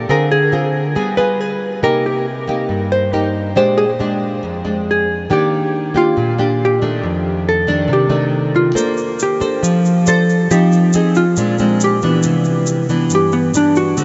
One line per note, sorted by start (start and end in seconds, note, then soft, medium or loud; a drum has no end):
0.09 0.93 D3 medium
0.09 0.37 C4 medium
0.09 0.37 F4 medium
0.09 0.37 G#4 medium
0.09 0.30 A#4 medium
0.31 0.52 G#4 medium
0.52 0.81 C4 medium
0.52 0.81 F4 soft
0.52 0.82 G#4 medium
0.95 1.80 G3 medium
0.95 1.14 B3 medium
0.95 1.14 F4 medium
0.95 1.14 G#4 medium
1.17 1.78 B3 medium
1.17 1.79 F4 medium
1.17 1.79 G#4 medium
1.17 1.40 B4 medium
1.40 1.83 G#4 medium
1.83 2.67 C3 medium
1.83 2.25 A#3 medium
1.83 2.26 D#4 soft
1.83 2.26 G4 medium
1.83 2.04 A#4 medium
2.06 2.26 G4 soft
2.48 3.09 A#3 medium
2.48 3.09 D#4 medium
2.48 3.09 G4 medium
2.69 3.53 G2 medium
2.92 3.14 C5 medium
3.13 3.54 A#3 medium
3.13 3.54 D#4 medium
3.13 3.54 G4 medium
3.13 3.56 A#4 medium
3.56 4.40 A#2 medium
3.56 3.84 G#3 medium
3.56 3.84 D4 medium
3.56 3.84 G4 medium
3.56 3.77 C5 medium
3.78 3.90 G#4 medium
3.99 4.42 G#3 medium
3.99 4.42 D4 medium
3.99 4.43 G4 medium
4.43 5.27 F2 medium
4.65 5.26 G#3 medium
4.65 5.26 D4 medium
4.91 5.29 G#4 medium
5.30 6.14 D#3 medium
5.30 5.91 A#3 soft
5.30 5.91 D4 medium
5.30 5.92 G4 medium
5.94 6.34 A#3 medium
5.94 6.34 D4 medium
5.94 6.57 F4 medium
5.94 6.35 G4 medium
6.17 7.01 A#2 medium
6.38 6.78 A#3 medium
6.38 6.78 D4 medium
6.38 6.78 G4 medium
6.65 7.03 G4 medium
6.82 7.65 D#3 medium
6.82 7.65 A3 medium
6.82 7.65 D4 medium
7.03 7.88 F2 medium
7.49 7.88 A4 medium
7.67 8.07 D#3 medium
7.67 8.08 A3 medium
7.67 8.08 D4 medium
7.88 8.73 C3 medium
7.93 8.52 G4 medium
8.09 8.72 D#3 medium
8.09 8.72 A3 medium
8.09 8.72 D4 medium
8.56 9.16 F4 medium
8.75 9.60 A#3 medium
8.75 9.19 D4 medium
8.75 9.19 A4 medium
8.75 9.19 C5 medium
8.75 shaker medium
8.97 shaker soft
9.19 9.62 G4 medium
9.19 shaker medium
9.40 10.02 D4 medium
9.40 10.03 A4 medium
9.40 10.03 C5 medium
9.40 shaker soft
9.63 10.48 F3 medium
9.63 shaker medium
9.85 shaker soft
10.06 10.35 D4 soft
10.06 10.35 A4 medium
10.06 10.48 A4 medium
10.06 10.35 C5 medium
10.06 shaker medium
10.30 shaker soft
10.51 11.35 F3 medium
10.51 10.90 C4 medium
10.51 10.91 D#4 medium
10.51 11.12 G4 medium
10.51 shaker medium
10.72 shaker soft
10.93 11.23 C4 medium
10.93 11.24 D#4 medium
10.93 11.24 G#4 medium
10.93 shaker medium
11.15 11.77 F4 medium
11.15 shaker soft
11.36 12.22 A#2 medium
11.36 11.55 G#3 medium
11.36 11.56 C4 soft
11.36 11.56 D4 medium
11.36 shaker medium
11.58 11.99 G#3 medium
11.58 11.99 C4 medium
11.58 11.99 D4 medium
11.58 shaker soft
11.80 12.23 G4 medium
11.80 shaker medium
12.02 12.86 E3 medium
12.02 12.86 B3 medium
12.02 12.86 D4 medium
12.02 shaker soft
12.23 13.09 C3 medium
12.23 shaker medium
12.44 shaker soft
12.66 shaker medium
12.89 13.51 E3 medium
12.89 13.51 B3 medium
12.89 13.51 D4 medium
12.89 shaker soft
13.10 13.95 G2 medium
13.10 shaker medium
13.15 13.34 G4 medium
13.32 13.54 B3 medium
13.32 shaker soft
13.54 13.96 E3 medium
13.54 13.96 B3 medium
13.54 13.96 D4 medium
13.54 13.76 D4 medium
13.54 shaker medium
13.75 14.04 F#4 medium
13.75 shaker soft
13.97 14.04 D3 medium
13.97 14.04 A3 soft
13.97 14.04 C4 soft
13.97 14.04 F#4 medium
13.97 shaker medium